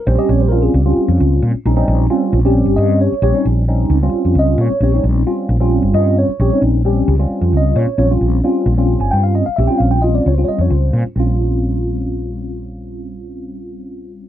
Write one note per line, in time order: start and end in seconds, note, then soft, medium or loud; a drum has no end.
0.07 0.16 A#1 loud
0.07 0.16 G3 medium
0.07 0.16 C4 medium
0.07 0.16 C#4 medium
0.07 0.16 G4 medium
0.07 0.17 C5 medium
0.18 0.47 G3 medium
0.18 0.47 C4 medium
0.18 0.47 C#4 medium
0.18 0.47 G4 medium
0.18 0.29 D#5 medium
0.29 0.67 A#1 medium
0.29 0.40 C#5 medium
0.41 0.51 C5 medium
0.49 0.80 G3 medium
0.49 0.80 C4 medium
0.49 0.80 C#4 medium
0.49 0.81 F4 medium
0.49 0.61 A#4 medium
0.62 0.73 G#4 medium
0.74 0.93 C#2 medium
0.74 1.16 G4 medium
0.85 1.53 G3 medium
0.85 1.53 C4 medium
0.85 1.54 C#4 medium
0.85 1.54 F4 medium
0.97 muted fretless electric bass stroke soft
1.08 1.18 F2 medium
1.20 1.39 C#2 medium
1.42 1.52 A#2 medium
1.54 muted fretless electric bass stroke soft
1.65 1.84 A#1 medium
1.65 1.75 G3 medium
1.65 1.75 C4 medium
1.65 1.75 C#4 medium
1.65 1.75 D#4 medium
1.76 2.05 G3 medium
1.76 2.05 C4 medium
1.76 2.05 C#4 medium
1.76 2.05 D#4 medium
1.88 2.07 A#1 medium
2.10 2.39 G3 medium
2.10 2.39 C4 medium
2.10 2.39 C#4 medium
2.10 2.39 F4 medium
2.33 2.61 A#1 medium
2.45 3.13 G3 medium
2.45 3.12 C4 medium
2.45 3.13 C#4 medium
2.45 3.13 G4 medium
2.66 2.75 G1 medium
2.76 3.07 G2 medium
2.76 2.99 D#5 medium
3.01 3.22 C#5 medium
3.12 muted fretless electric bass stroke soft
3.22 3.32 A#1 medium
3.22 3.32 G3 medium
3.22 3.32 C4 medium
3.22 3.33 C#4 medium
3.22 3.33 G4 medium
3.22 3.45 C#5 medium
3.34 3.63 G3 medium
3.34 3.63 C4 medium
3.34 3.63 C#4 medium
3.34 3.64 D#4 medium
3.45 3.84 A#1 medium
3.68 3.97 G3 medium
3.68 3.97 C4 medium
3.68 3.97 C#4 medium
3.68 3.97 D#4 medium
3.90 4.09 C#2 medium
4.02 4.70 G3 medium
4.02 4.70 C4 medium
4.02 4.71 C#4 medium
4.02 4.71 F4 medium
4.13 muted fretless electric bass stroke soft
4.25 4.34 F2 medium
4.35 4.55 C#2 medium
4.39 4.59 D#5 medium
4.58 4.68 A#2 medium
4.58 4.82 C#5 medium
4.70 muted fretless electric bass stroke soft
4.80 5.00 A#1 medium
4.80 4.91 G3 medium
4.80 4.91 C4 medium
4.80 4.92 C#4 medium
4.80 4.92 G4 medium
4.80 5.04 C#5 medium
4.94 5.22 G3 medium
4.94 5.22 C4 medium
4.94 5.23 C#4 medium
4.94 5.23 D#4 medium
5.04 5.23 A#1 medium
5.26 5.56 G3 medium
5.26 5.56 C4 medium
5.26 5.56 C#4 medium
5.26 5.56 F4 medium
5.49 5.78 A#1 medium
5.60 6.28 G3 medium
5.60 6.29 C4 medium
5.60 6.29 C#4 medium
5.60 6.29 F4 medium
5.82 5.92 G1 medium
5.94 6.23 G2 medium
5.94 6.16 D#5 medium
6.18 6.39 C#5 medium
6.29 muted fretless electric bass stroke soft
6.40 6.49 A#1 medium
6.40 6.50 G3 medium
6.40 6.50 C4 medium
6.40 6.50 C#4 medium
6.40 6.50 G4 medium
6.40 6.62 C#5 medium
6.52 6.81 G3 medium
6.52 6.81 C4 medium
6.52 6.81 C#4 medium
6.52 6.81 D#4 medium
6.62 7.01 A#1 medium
6.85 7.14 G3 medium
6.85 7.14 C4 medium
6.85 7.14 C#4 medium
6.85 7.15 G4 medium
7.08 7.27 C#2 medium
7.19 7.87 G3 medium
7.19 7.88 C4 medium
7.19 7.88 C#4 medium
7.19 7.87 F4 medium
7.30 muted fretless electric bass stroke soft
7.41 7.51 F2 medium
7.53 7.72 C#2 medium
7.57 7.77 D#5 medium
7.76 7.85 A#2 medium
7.76 7.97 C#5 medium
7.87 muted fretless electric bass stroke soft
7.98 8.17 A#1 medium
7.98 8.08 G3 medium
7.98 8.08 C4 medium
7.98 8.08 C#4 medium
7.98 8.08 F4 medium
7.98 8.12 C#5 medium
8.10 8.39 G3 medium
8.10 8.39 C4 medium
8.10 8.39 C#4 soft
8.10 8.40 F4 medium
8.21 8.40 A#1 medium
8.43 8.73 G3 medium
8.43 8.73 C4 medium
8.43 8.73 C#4 medium
8.43 8.73 F4 medium
8.66 8.95 A#1 medium
8.77 9.46 G3 medium
8.77 9.46 C4 medium
8.77 9.46 C#4 medium
8.77 9.46 F4 medium
9.00 9.10 G1 medium
9.00 9.11 G#5 medium
9.11 9.41 G2 medium
9.11 9.22 G5 medium
9.23 9.34 F5 medium
9.35 9.45 D#5 medium
9.46 9.57 F5 medium
9.46 muted fretless electric bass stroke soft
9.56 9.67 A#1 medium
9.56 9.67 G3 medium
9.56 9.68 C4 medium
9.56 9.67 C#4 medium
9.56 9.68 G4 medium
9.56 9.67 E5 medium
9.67 9.98 G3 medium
9.67 9.98 C4 medium
9.67 9.98 C#4 soft
9.67 9.98 F4 medium
9.67 9.79 G5 medium
9.78 10.19 A#1 medium
9.78 9.90 F5 medium
9.91 10.02 G5 medium
10.02 10.32 G3 medium
10.02 10.32 C4 medium
10.02 10.32 C#4 medium
10.02 10.32 F4 medium
10.02 10.13 D#5 medium
10.15 10.25 D5 medium
10.26 10.45 C#2 medium
10.26 10.34 C#5 medium
10.34 11.05 G3 medium
10.34 11.05 C4 medium
10.34 11.06 C#4 medium
10.34 10.41 C5 soft
10.38 11.06 F4 medium
10.44 10.49 C#5 soft
10.48 10.59 D#5 medium
10.48 muted fretless electric bass stroke soft
10.58 10.68 F2 medium
10.58 10.71 C#5 medium
10.70 10.90 C#2 medium
10.70 11.02 C5 medium
10.93 11.03 A#2 medium
11.05 muted fretless electric bass stroke soft
11.16 14.29 A#1 medium
11.16 14.29 G3 medium
11.16 14.29 C4 medium
11.16 14.29 C#4 medium
11.16 14.29 F4 medium